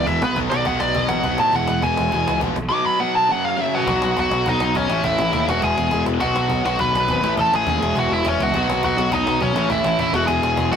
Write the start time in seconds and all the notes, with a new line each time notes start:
Already playing: B3
0.07 E1 E2 B2 E3 G#3 B3 E4 E5, cajon bass
0.22 B1 B4, cajon slap
0.36 B1 B2 D#3 F#3 B3 D#4, cajon bass
0.50 B1 D5, cajon slap
0.65 B1 B2 D#3 F#3 B3 D#4 F#5, cajon bass
0.80 B1 D5, cajon slap
0.94 B1 B2 D#3 F#3 B3 D#4, cajon bass
1.09 A1 F#5, cajon slap
1.23 B1 B2 D#3 F#3 B3 D#4, cajon bass
1.38 A2 A5, cajon slap
1.52 E1 E2 B2 E3 G#3 B3 E4 F#5, cajon bass
1.67 E1, cajon slap
1.82 E1 E2 B2 E3 G#3 B3 E4 G#5, cajon bass
1.97 E1, cajon slap
2.11 E1 E2 B2 E3 G#3 B3 E4, cajon bass
2.28 C#2, cajon slap
2.40 A#1 E2 B2 E3 G#3 B3 E4, cajon bass
2.55 B1, cajon slap
2.69 B2 F#3 B3 D#4 D6
2.86 B5
2.99 B2 F#3 B3 D#4 F#5
3.16 A5
3.28 F#2 C#3 F#3 A#3 C#4 F#5
3.45 F5
3.57 F#2 C#3 F#3 A#3 C#4 E5
3.75 F#4 B4 F#5
3.86 B1 B2 F#3 B3 D#4, cajon bass
4.02 B1, cajon slap
4.17 B1 F#4 F#5, cajon bass
4.30 B1 B2 F#3 B3 D#4, cajon slap
4.46 B1 D#4 D#5, cajon bass
4.60 B1, cajon slap
4.75 B1 C#4 C#5, cajon bass
4.87 A1 A2 E3 A3 C#4 E4, cajon slap
5.03 A1 E4 E5, cajon bass
5.18 A1, cajon slap
5.32 D#2 A2 E3 A3 C#4 E4, cajon bass
5.47 E1 E2 B2 E3 G#3 B3 E4 F#4 F#5, cajon slap
5.62 E1 G#4 G#5, cajon bass
5.78 E1, cajon slap
5.90 E1 E3 G#3 B3 E4, cajon bass
6.06 E1, cajon slap
6.19 B1 B2 D#3 F#3 B3 F#4 F#5, cajon bass
6.36 B1, cajon slap
6.50 B1, cajon bass
6.62 B1 B2 D#3 F#3 B3 F#4, cajon slap
6.67 F#5
6.79 B1 B4 B5, cajon bass
6.93 B1, cajon slap
7.08 G#1, cajon bass
7.21 A1 A2 E3 A3 C#4 E4, cajon slap
7.37 A1 A4 A5, cajon bass
7.53 A1 G#4 G#5, cajon slap
7.65 D#2 A2 E3 A3 C#4 E4, cajon bass
7.79 E1 E2 B2 E3 G#3 B3 E4, cajon slap
7.96 E1 F#4 F#5, cajon bass, cajon slap
8.10 E1 E4 E5
8.23 E1 E3 G#3 B3 E4, cajon bass, cajon slap
8.28 C#4 C#5
8.40 C#2 F#4 F#5, cajon slap
8.53 B1 B2 D#3 F#3 B3 D#4, cajon bass
8.69 B1, cajon slap
8.83 B1 F#4 F#5, cajon bass
8.97 B1 B2 D#3 F#3 B3 D#4, cajon slap
9.12 B1 D#4 D#5, cajon bass
9.26 B1, cajon slap
9.41 B1 C#4 C#5, cajon bass
9.54 A1 A2 E3 A3 C#4, cajon slap
9.58 E4
9.70 A1 E4 E5, cajon bass
9.84 A1, cajon slap
9.97 A1 A2 E3 A3 C#4 E4 E5, cajon bass
10.01 E4
10.12 E1 E2 B2 E3 G#3 B3 F#4 F#5, cajon slap
10.16 E4
10.26 E1 G#4 G#5, cajon bass
10.41 E1, cajon slap
10.56 E1 E3 G#3 B3 E4, cajon bass
10.72 A#1 F#4 F#5, cajon slap